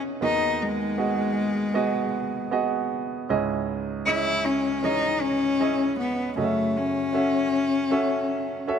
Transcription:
Already playing: grand piano E2 E3 C#4 D#4 E4 G#4 B4 D#5
0.21 grand piano D#2 D#3 B3 F#4 G#4 D#5, cello D#4
0.62 cello G#3
0.98 grand piano B3 F#4 G#4 D#5
1.74 grand piano B3 F#4 G#4 D#5
2.51 grand piano B3 F#4 G#4 D#5
3.29 grand piano C#2 G#2 C#4 E4 G#4 D#5
4.06 grand piano C#4 E4 G#4 D#5, cello E4
4.45 cello C#4
4.83 grand piano E3 C#4 G#4 D#5, cello D#4
5.22 cello C#4
5.60 grand piano C#4 E4 G#4 D#5
6.00 cello B3
6.36 grand piano F#2 C#3 C#4 F#4 A4 D#5, cello A3
6.44 grand piano E5
6.77 cello C#4
7.13 grand piano C#4 F#4 A4 E5
7.91 grand piano C#4 F#4 A4 E5
8.67 grand piano C#4 F#4 A4 E5

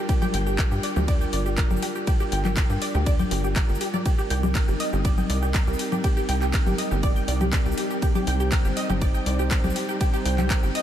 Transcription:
Already playing: analog synth pad G3 D4 F4 A#4
0.09 synth arpeggio sound G4 G5, kick, ride, shaker
0.22 synth arpeggio sound G4 G5, low conga, shaker
0.34 analog synth bass G1, synth arpeggio sound G5 G6, open hi-hat, shaker
0.47 synth arpeggio sound G4 G5, shaker
0.59 synth arpeggio sound A#4 A#5, kick, clap, ride, shaker
0.71 analog synth bass G2, synth arpeggio sound G4 G5, shaker
0.83 synth arpeggio sound D5 D6, open hi-hat, shaker
0.96 analog synth bass D2, synth arpeggio sound G4 G5, low conga, shaker
1.08 synth arpeggio sound D5 D6, kick, ride, shaker
1.21 synth arpeggio sound G5 G6, shaker
1.33 analog synth bass G1, synth arpeggio sound D5 D6, open hi-hat, shaker
1.46 synth arpeggio sound G4 G5, shaker
1.58 synth arpeggio sound A#4 A#5, kick, clap, ride, shaker
1.71 analog synth bass G1, synth arpeggio sound G4 G5, low conga, shaker
1.77 shaker
1.82 synth arpeggio sound G4 G5, open hi-hat, shaker
1.95 synth arpeggio sound G4 G5, shaker
2.07 synth arpeggio sound G4 G5, kick, ride, shaker
2.20 synth arpeggio sound G4 G5, shaker
2.32 analog synth bass G1, synth arpeggio sound G5 G6, open hi-hat, shaker
2.45 synth arpeggio sound G4 G5, clap, low conga, shaker
2.57 synth arpeggio sound A#4 A#5, kick, clap, ride, shaker
2.70 analog synth bass G2, synth arpeggio sound G4 G5, shaker
2.82 synth arpeggio sound D5 D6, open hi-hat, shaker
2.94 analog synth bass D2, synth arpeggio sound G4 G5, shaker
3.06 synth arpeggio sound D5 D6, kick, ride, shaker
3.19 synth arpeggio sound G5 G6, low conga, shaker
3.31 analog synth bass G1, synth arpeggio sound G4 G5, open hi-hat, shaker
3.44 synth arpeggio sound G4 G5, shaker
3.56 synth arpeggio sound A#5 A#6, kick, clap, ride, shaker
3.69 analog synth bass G1, synth arpeggio sound G4 G5, shaker
3.75 shaker
3.81 synth arpeggio sound G4 G5, open hi-hat, shaker
3.94 synth arpeggio sound D5 D6, low conga, shaker
4.06 analog synth pad G3 C4 D#4 A#4, synth arpeggio sound G4 G5, kick, ride, shaker
4.18 synth arpeggio sound G4 G5, shaker
4.30 analog synth bass C2, synth arpeggio sound G5 G6, open hi-hat, shaker
4.43 synth arpeggio sound G4 G5, low conga, shaker
4.55 synth arpeggio sound A#4 A#5, kick, clap, ride, shaker
4.68 analog synth bass G1, synth arpeggio sound G4 G5, shaker
4.80 synth arpeggio sound D#5 D#6, open hi-hat, shaker
4.93 analog synth bass G1, synth arpeggio sound G4 G5, shaker
5.05 synth arpeggio sound D5 D6, kick, ride, shaker
5.18 synth arpeggio sound G5 G6, low conga, shaker
5.30 analog synth bass C2, synth arpeggio sound D5 D6, open hi-hat, shaker
5.42 synth arpeggio sound G4 G5, shaker
5.54 synth arpeggio sound A#4 A#5, kick, clap, ride, shaker
5.67 analog synth bass C2, synth arpeggio sound G4 G5, shaker
5.73 shaker
5.79 synth arpeggio sound G4 G5, open hi-hat, shaker
5.92 synth arpeggio sound G4 G5, low conga, shaker
6.04 synth arpeggio sound G4 G5, kick, ride, shaker
6.17 synth arpeggio sound G4 G5, shaker
6.29 analog synth bass C2, synth arpeggio sound G5 G6, open hi-hat, shaker
6.42 synth arpeggio sound G4 G5, clap, shaker
6.53 synth arpeggio sound A#4 A#5, kick, clap, ride, shaker
6.66 analog synth bass G1, synth arpeggio sound G4 G5, low conga, shaker
6.78 synth arpeggio sound D#5 D#6, open hi-hat, shaker
6.91 analog synth bass G1, synth arpeggio sound G4 G5, shaker
7.03 synth arpeggio sound D5 D6, kick, ride, shaker
7.16 synth arpeggio sound G5 G6, shaker
7.28 analog synth bass C2, synth arpeggio sound D5 D6, open hi-hat, shaker
7.41 synth arpeggio sound G4 G5, low conga, shaker
7.53 synth arpeggio sound A#4 A#5, kick, clap, ride, shaker
7.66 analog synth bass C2, synth arpeggio sound G4 G5, shaker
7.72 shaker
7.78 synth arpeggio sound G4 G5, open hi-hat, shaker
7.90 synth arpeggio sound G4 G5, shaker
8.02 synth arpeggio sound G4 G5, analog synth pad C5, kick, ride, shaker
8.15 synth arpeggio sound G4 G5, low conga, shaker
8.27 analog synth bass C2, synth arpeggio sound G5 G6, open hi-hat, shaker
8.40 synth arpeggio sound G4 G5, shaker
8.52 synth arpeggio sound A#4 A#5, kick, clap, ride, shaker
8.65 analog synth bass G1, synth arpeggio sound G4 G5, shaker
8.77 synth arpeggio sound D#5 D#6, open hi-hat, shaker
8.90 analog synth bass G1, synth arpeggio sound G4 G5, low conga, shaker
9.02 synth arpeggio sound D5 D6, kick, ride, shaker
9.14 synth arpeggio sound G5 G6, shaker
9.26 analog synth bass C2, synth arpeggio sound D5 D6, open hi-hat, shaker
9.39 synth arpeggio sound G4 G5, shaker
9.51 synth arpeggio sound A#4 A#5, kick, clap, ride, shaker
9.64 analog synth bass C2, synth arpeggio sound G4 G5, low conga, shaker
9.70 shaker
9.76 synth arpeggio sound G4 G5, open hi-hat, shaker
9.89 synth arpeggio sound G4 G5, shaker
10.01 synth arpeggio sound G4 G5, kick, ride, shaker
10.13 synth arpeggio sound G4 G5, shaker
10.25 analog synth bass C2, synth arpeggio sound G5 G6, open hi-hat, shaker
10.38 synth arpeggio sound G4 G5, clap, low conga, shaker
10.50 synth arpeggio sound A#4 A#5, kick, clap, ride, shaker
10.63 analog synth bass G1, synth arpeggio sound G4 G5, shaker
10.75 synth arpeggio sound D#5 D#6, open hi-hat, shaker

